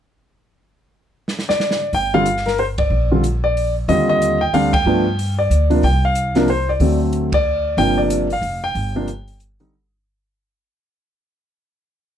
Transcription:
1.28 snare
1.39 snare
1.49 grand piano D5, snare
1.60 snare
1.71 snare
1.93 upright bass G1, grand piano G5, kick, open hi-hat
2.14 grand piano D3 G3 C4 F4 F5
2.26 closed hi-hat
2.37 snare
2.46 grand piano A#4, snare, open hi-hat
2.58 grand piano C5, open hi-hat
2.78 grand piano D5, kick, ride
2.90 upright bass A#1
3.11 grand piano D3 G3 C4 F4
3.24 closed hi-hat
3.44 grand piano D5
3.57 open hi-hat
3.88 upright bass D#2, grand piano D3 G3 C4 F4 D#5, kick, open hi-hat
4.09 grand piano D#5
4.22 closed hi-hat
4.41 grand piano G5
4.53 upright bass D2, grand piano D3 G3 C4 D4 F5, open hi-hat
4.73 grand piano G5, kick, ride
4.85 upright bass G2, grand piano F3 A3 B3 D4
5.19 open hi-hat
5.39 grand piano D5
5.50 upright bass D2, closed hi-hat
5.70 grand piano C3 F3 A#3 D4, open hi-hat
5.83 upright bass C2, grand piano G5, kick, open hi-hat
6.05 grand piano F5
6.15 closed hi-hat
6.35 grand piano C3 F3 A#3 D4 A#4, snare, open hi-hat
6.48 grand piano C5, open hi-hat
6.69 grand piano D5
6.80 upright bass D2, grand piano D3 F#3 A3 C4, kick, open hi-hat
7.13 closed hi-hat
7.32 grand piano D5, kick, ride
7.77 upright bass G1, grand piano C3 F3 A#3 D4 G5, kick, open hi-hat
7.98 grand piano D5
8.10 closed hi-hat
8.30 grand piano F5, open hi-hat
8.41 upright bass F1, open hi-hat
8.64 grand piano G5
8.75 upright bass G1, kick, open hi-hat
8.96 grand piano C3 F3 A#3 D4
9.08 closed hi-hat
9.28 open hi-hat
9.40 closed hi-hat
9.60 grand piano D3 G3 C4 D#4, open hi-hat

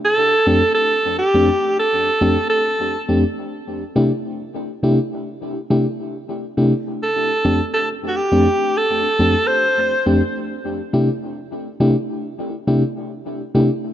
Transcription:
0.05 alto saxophone A4
0.47 fm electric piano F2 A3 C4 D4 G4
0.74 alto saxophone A4
1.18 alto saxophone G4
1.34 fm electric piano F2 A3 C4 D4 G4
1.79 alto saxophone A4
2.04 fm electric piano D4 G4
2.21 fm electric piano F2 A3 C4 D4 G4
2.50 alto saxophone A4
3.08 fm electric piano F2 A3 C4 D4 G4
3.96 fm electric piano C3 A3 D4 E4 G4
4.83 fm electric piano C3 A3 D4 E4 G4
5.53 fm electric piano E4 G4
5.70 fm electric piano C3 A3 D4 E4 G4
6.57 fm electric piano C3 A3 D4 E4 G4
7.03 alto saxophone A4
7.44 fm electric piano F2 A3 C4 D4 G4
7.73 alto saxophone A4
8.08 alto saxophone F#4
8.16 alto saxophone G4
8.32 fm electric piano F2 A3 C4 D4 G4
8.77 alto saxophone A4
9.02 fm electric piano D4 G4
9.19 fm electric piano F2 A3 C4 D4 G4
9.47 alto saxophone C5
10.06 fm electric piano F2 A3 C4 D4 G4
10.93 fm electric piano C3 A3 D4 E4 G4
11.80 fm electric piano C3 A3 D4 E4 G4
12.50 fm electric piano E4 G4
12.67 fm electric piano C3 A3 D4 E4 G4
13.55 fm electric piano C3 A3 D4 E4 G4

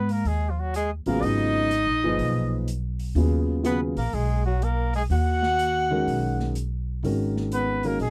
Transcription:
Already playing: upright bass G#2, tenor saxophone B3, trumpet B4
0.09 tenor saxophone A#3, trumpet A#4, open hi-hat
0.25 upright bass D#2, tenor saxophone G#3, trumpet G#4, open hi-hat
0.50 tenor saxophone F3, trumpet F4
0.59 tenor saxophone F#3, trumpet F#4
0.74 tenor saxophone G#3, trumpet G#4, closed hi-hat
1.06 upright bass A1, grand piano C#3 F#3 B3 F4 G#4, tenor saxophone A#3, trumpet A#4, open hi-hat
1.22 upright bass G#1, tenor saxophone D#4, trumpet D#5, open hi-hat
1.71 closed hi-hat
1.86 upright bass A#1
2.04 upright bass G1, grand piano A#2 F3 D#4 G#4 B4
2.19 upright bass B1, open hi-hat
2.68 closed hi-hat
2.99 open hi-hat
3.15 upright bass D#2, grand piano C#3 F#3 B3 F4 G#4, open hi-hat
3.63 grand piano C#3 F#3 B3 F4 G#4, tenor saxophone B3, trumpet B4, closed hi-hat
3.96 upright bass A#1, tenor saxophone A#3, trumpet A#4, open hi-hat
4.13 upright bass B1, tenor saxophone G#3, trumpet G#4, open hi-hat
4.45 tenor saxophone F#3, trumpet F#4
4.62 tenor saxophone A#3, trumpet A#4, closed hi-hat
4.94 tenor saxophone G#3, trumpet G#4, open hi-hat
5.10 upright bass D#2, tenor saxophone F#4, trumpet F#5, open hi-hat
5.43 snare
5.59 closed hi-hat
5.90 grand piano D#3 G#3 C#4 F#4 A#4
6.07 upright bass B1, open hi-hat
6.40 snare
6.55 closed hi-hat
7.03 upright bass G#1, grand piano D#3 G#3 C#4 F#4 A#4, open hi-hat
7.36 snare
7.52 tenor saxophone B3, trumpet B4, closed hi-hat
7.83 grand piano D#3 G#3 C#4 F#4 A#4, tenor saxophone A#3, trumpet A#4, open hi-hat
8.00 upright bass A#1, tenor saxophone G#3, trumpet G#4, open hi-hat

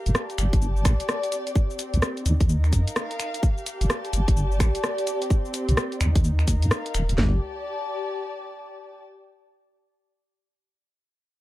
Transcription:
Already playing: string section G4 A#4 F5
0.06 wobble bass G1, closed hi-hat, cabasa
0.14 string section A5, cross-stick, cabasa
0.19 string section D5
0.30 closed hi-hat, cabasa
0.38 wobble bass G1, finger snap, closed hi-hat, cabasa
0.53 wobble bass G1, kick, closed hi-hat, cabasa
0.62 cabasa
0.77 cabasa
0.85 wobble bass A#1, finger snap, kick, cross-stick, closed hi-hat, cabasa
1.00 closed hi-hat, cabasa
1.09 cross-stick, cabasa
1.23 closed hi-hat, cabasa
1.32 string section C4, closed hi-hat, cabasa
1.47 closed hi-hat, cabasa
1.55 kick, cabasa
1.70 cabasa
1.79 closed hi-hat, cabasa
1.94 wobble bass C2, closed hi-hat, cabasa
2.02 cross-stick, cabasa
2.17 closed hi-hat, cabasa
2.26 wobble bass D#2, string section D#4, closed hi-hat, cabasa
2.40 wobble bass D#2, string section A#4, kick, closed hi-hat, cabasa
2.49 cabasa
2.64 finger snap, cabasa
2.73 wobble bass F#2, kick, closed hi-hat, cabasa
2.80 string section F5
2.88 closed hi-hat, cabasa
2.96 cross-stick, cabasa
3.11 closed hi-hat, cabasa
3.20 finger snap, closed hi-hat, cabasa
3.34 closed hi-hat, cabasa
3.43 string section G4, kick, cabasa
3.58 cabasa
3.66 closed hi-hat, cabasa
3.80 wobble bass G1, string section A5, closed hi-hat, cabasa
3.84 string section D5
3.90 cross-stick, cabasa
4.05 closed hi-hat, cabasa
4.13 wobble bass G1, closed hi-hat, cabasa
4.28 wobble bass G1, kick, closed hi-hat, cabasa
4.37 cabasa
4.52 cabasa
4.60 wobble bass A#1, finger snap, kick, cross-stick, closed hi-hat, cabasa
4.75 closed hi-hat, cabasa
4.84 cross-stick, cabasa
4.98 closed hi-hat, cabasa
5.07 string section C4, closed hi-hat, cabasa
5.22 closed hi-hat, cabasa
5.30 kick, cabasa
5.45 cabasa
5.54 closed hi-hat, cabasa
5.68 wobble bass C2, closed hi-hat, cabasa
5.77 cross-stick, cabasa
5.92 closed hi-hat, cabasa
6.01 wobble bass D#2, string section D#4, finger snap, closed hi-hat, cabasa
6.15 wobble bass D#2, kick, closed hi-hat, cabasa
6.24 cabasa
6.34 string section A#4
6.39 finger snap, cabasa
6.48 kick, closed hi-hat, cabasa
6.56 string section F5
6.62 wobble bass F#2, closed hi-hat, cabasa
6.71 cross-stick, cabasa
6.86 closed hi-hat, cabasa
6.95 wobble bass D#1, finger snap, closed hi-hat, cabasa
7.09 wobble bass D#1, closed hi-hat, cabasa
7.18 wobble bass G1, string section G4, snare, floor tom
7.27 string section D5
7.35 string section A5

